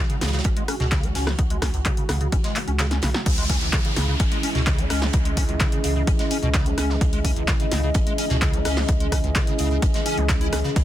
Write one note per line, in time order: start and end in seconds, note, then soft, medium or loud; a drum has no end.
0.00 3.22 C#3 medium
0.00 3.22 E3 medium
0.00 3.22 G#3 medium
0.00 3.25 F#4 medium
0.10 0.16 C#3 medium
0.10 closed hi-hat medium
0.21 0.41 C#2 medium
0.21 0.31 C#3 medium
0.21 snare medium
0.21 closed hi-hat medium
0.21 open hi-hat loud
0.27 snare medium
0.27 closed hi-hat medium
0.33 0.40 C#3 medium
0.33 snare medium
0.33 closed hi-hat medium
0.39 snare medium
0.39 closed hi-hat medium
0.44 0.55 G#1 medium
0.44 0.49 C#4 medium
0.44 kick loud
0.44 closed hi-hat medium
0.56 0.63 G#3 medium
0.56 closed hi-hat medium
0.68 0.75 C#4 medium
0.68 cross-stick medium
0.68 closed hi-hat medium
0.68 open hi-hat loud
0.80 1.12 C#2 medium
0.80 0.86 B2 loud
0.80 snare soft
0.80 closed hi-hat soft
0.91 1.05 C#3 loud
0.91 kick loud
0.91 snare loud
0.91 clap loud
0.91 closed hi-hat medium
1.03 1.10 G#3 loud
1.03 closed hi-hat medium
1.15 1.34 C#2 medium
1.15 1.28 C#4 medium
1.15 snare medium
1.15 open hi-hat loud
1.15 open hi-hat medium
1.27 1.33 C#3 medium
1.27 cross-stick medium
1.27 snare medium
1.39 1.70 C#2 loud
1.39 1.42 C#3 medium
1.39 kick loud
1.39 closed hi-hat medium
1.50 1.57 G#3 medium
1.50 closed hi-hat medium
1.62 1.69 C#4 medium
1.62 kick medium
1.62 cross-stick medium
1.62 snare medium
1.62 closed hi-hat medium
1.62 open hi-hat loud
1.74 1.83 C#2 medium
1.74 1.80 C#2 medium
1.74 closed hi-hat soft
1.85 1.92 C#3 loud
1.85 kick loud
1.85 clap loud
1.85 closed hi-hat medium
1.97 2.04 C#3 medium
1.97 closed hi-hat medium
2.09 2.28 C#2 medium
2.09 2.19 C#3 medium
2.09 cross-stick medium
2.09 snare medium
2.09 closed hi-hat medium
2.09 open hi-hat loud
2.21 2.27 C#3 medium
2.21 closed hi-hat soft
2.32 2.42 G#1 medium
2.32 2.36 C#4 medium
2.32 kick loud
2.32 closed hi-hat medium
2.44 2.57 G#3 medium
2.44 snare medium
2.44 closed hi-hat medium
2.56 2.60 C#4 medium
2.56 clap medium
2.56 closed hi-hat medium
2.56 open hi-hat loud
2.67 2.99 C#2 loud
2.67 2.71 C#4 medium
2.67 closed hi-hat soft
2.79 2.86 C#3 medium
2.79 snare loud
2.79 clap loud
2.79 closed hi-hat medium
2.91 2.97 C#4 medium
2.91 snare medium
2.91 closed hi-hat medium
3.02 3.12 B1 loud
3.02 3.09 C#3 medium
3.02 snare medium
3.02 closed hi-hat medium
3.02 open hi-hat loud
3.14 3.21 F#3 medium
3.14 snare soft
3.14 snare medium
3.26 3.58 C#2 loud
3.26 10.84 C#3 medium
3.26 3.30 C#3 medium
3.26 10.84 E3 medium
3.26 10.84 G#3 medium
3.26 10.84 C#4 medium
3.26 10.74 E4 medium
3.26 kick loud
3.26 closed hi-hat medium
3.26 crash loud
3.26 downlifter medium
3.37 3.44 G#3 medium
3.37 closed hi-hat soft
3.37 closed hi-hat medium
3.49 3.56 C#4 medium
3.49 kick medium
3.49 closed hi-hat medium
3.49 open hi-hat loud
3.61 3.71 C#2 medium
3.61 3.68 C#2 medium
3.61 closed hi-hat soft
3.68 10.84 G#4 medium
3.73 3.79 C#3 loud
3.73 kick loud
3.73 snare loud
3.73 clap loud
3.73 closed hi-hat medium
3.85 3.91 C#3 medium
3.85 closed hi-hat medium
3.96 4.16 C#2 medium
3.96 4.06 C#3 medium
3.96 snare medium
3.96 closed hi-hat medium
3.96 open hi-hat loud
4.08 4.15 C#3 medium
4.12 10.84 D#5 medium
4.20 4.30 G#1 medium
4.20 4.24 C#4 medium
4.20 kick loud
4.20 closed hi-hat loud
4.20 closed hi-hat medium
4.32 4.38 G#3 medium
4.32 closed hi-hat medium
4.43 4.50 C#4 medium
4.43 closed hi-hat medium
4.43 open hi-hat loud
4.55 4.87 C#2 loud
4.55 4.61 B2 loud
4.55 snare soft
4.55 closed hi-hat soft
4.67 4.80 C#3 loud
4.67 kick loud
4.67 snare loud
4.67 clap loud
4.67 closed hi-hat medium
4.78 4.85 G#3 loud
4.78 closed hi-hat medium
4.90 5.09 C#2 medium
4.90 5.03 C#4 medium
4.90 cross-stick medium
4.90 snare medium
4.90 open hi-hat loud
4.90 open hi-hat medium
5.02 5.08 C#3 medium
5.02 snare medium
5.13 5.45 C#2 loud
5.13 5.17 C#3 medium
5.13 kick loud
5.13 closed hi-hat loud
5.13 closed hi-hat medium
5.25 5.32 G#3 medium
5.25 closed hi-hat medium
5.37 5.44 C#4 medium
5.37 kick medium
5.37 closed hi-hat medium
5.37 open hi-hat loud
5.49 5.55 C#2 medium
5.49 5.58 C#2 medium
5.49 closed hi-hat soft
5.59 5.67 C#3 loud
5.59 kick loud
5.59 snare loud
5.59 clap loud
5.59 closed hi-hat medium
5.72 5.79 C#3 medium
5.72 closed hi-hat medium
5.84 6.03 C#2 medium
5.84 5.94 C#3 medium
5.84 closed hi-hat medium
5.84 open hi-hat loud
5.96 6.02 C#3 medium
6.07 6.17 G#1 medium
6.07 6.11 C#4 medium
6.07 kick loud
6.07 closed hi-hat medium
6.19 6.26 G#3 medium
6.19 snare medium
6.19 closed hi-hat medium
6.31 6.37 C#4 medium
6.31 closed hi-hat medium
6.31 open hi-hat loud
6.43 6.74 C#2 medium
6.43 6.49 B2 loud
6.43 closed hi-hat soft
6.54 6.68 C#3 loud
6.54 kick loud
6.54 snare loud
6.54 clap loud
6.54 closed hi-hat loud
6.54 closed hi-hat medium
6.66 6.72 G#3 loud
6.66 closed hi-hat medium
6.78 6.97 C#2 medium
6.78 6.91 C#4 medium
6.78 cross-stick medium
6.78 snare soft
6.78 closed hi-hat medium
6.78 open hi-hat loud
6.89 6.96 C#3 medium
6.89 snare soft
7.01 7.33 C#2 loud
7.01 7.05 C#3 medium
7.01 kick loud
7.01 closed hi-hat medium
7.12 7.19 G#3 medium
7.12 closed hi-hat soft
7.12 closed hi-hat medium
7.25 7.31 C#4 medium
7.25 kick medium
7.25 closed hi-hat medium
7.25 open hi-hat loud
7.36 7.46 C#2 medium
7.36 7.43 C#2 medium
7.36 closed hi-hat soft
7.47 7.54 C#3 loud
7.47 kick loud
7.47 snare loud
7.47 clap loud
7.47 closed hi-hat medium
7.60 7.66 C#3 medium
7.60 closed hi-hat medium
7.71 7.91 C#2 medium
7.71 7.81 C#3 medium
7.71 snare medium
7.71 closed hi-hat medium
7.71 open hi-hat loud
7.83 7.90 C#3 medium
7.94 8.05 G#1 medium
7.94 7.99 C#4 medium
7.94 kick loud
7.94 closed hi-hat medium
8.07 8.13 G#3 medium
8.07 closed hi-hat medium
8.18 8.25 C#4 medium
8.18 closed hi-hat medium
8.18 open hi-hat loud
8.29 8.62 C#2 loud
8.29 8.36 B2 loud
8.29 snare soft
8.29 closed hi-hat soft
8.41 8.55 C#3 loud
8.41 kick loud
8.41 snare loud
8.41 clap loud
8.41 closed hi-hat medium
8.53 8.60 G#3 loud
8.53 closed hi-hat medium
8.65 8.84 C#2 medium
8.65 8.78 C#4 medium
8.65 cross-stick medium
8.65 snare medium
8.65 open hi-hat medium
8.65 open hi-hat loud
8.77 8.83 C#3 medium
8.77 snare medium
8.88 9.20 C#2 loud
8.88 8.92 C#3 medium
8.88 kick loud
8.88 closed hi-hat loud
8.88 closed hi-hat medium
9.00 9.07 G#3 medium
9.00 closed hi-hat medium
9.12 9.18 C#4 medium
9.12 kick medium
9.12 cross-stick medium
9.12 closed hi-hat medium
9.12 open hi-hat loud
9.24 9.30 C#2 medium
9.24 9.33 C#2 medium
9.24 closed hi-hat soft
9.35 9.42 C#3 loud
9.35 kick loud
9.35 snare loud
9.35 clap loud
9.35 closed hi-hat medium
9.47 9.54 C#3 medium
9.47 closed hi-hat medium
9.58 9.78 C#2 medium
9.58 9.69 C#3 medium
9.58 closed hi-hat medium
9.58 open hi-hat loud
9.71 9.77 C#3 medium
9.82 9.92 G#1 loud
9.82 9.86 C#4 medium
9.82 kick loud
9.82 closed hi-hat medium
9.94 10.01 G#3 medium
9.94 snare medium
9.94 closed hi-hat medium
10.06 10.19 C#4 loud
10.06 closed hi-hat medium
10.06 open hi-hat loud
10.17 10.49 C#2 loud
10.17 10.24 C#3 medium
10.17 closed hi-hat soft
10.29 10.33 C#3 loud
10.29 kick loud
10.29 snare loud
10.29 clap loud
10.29 closed hi-hat medium
10.41 10.47 E4 loud
10.41 closed hi-hat medium
10.52 10.62 C#2 medium
10.52 10.59 C#4 medium
10.52 cross-stick medium
10.52 snare soft
10.52 closed hi-hat medium
10.52 open hi-hat loud
10.64 10.71 C#3 medium
10.64 snare soft
10.76 10.84 C#2 loud
10.76 10.80 C#3 medium
10.76 10.84 B3 medium
10.76 kick loud
10.76 closed hi-hat medium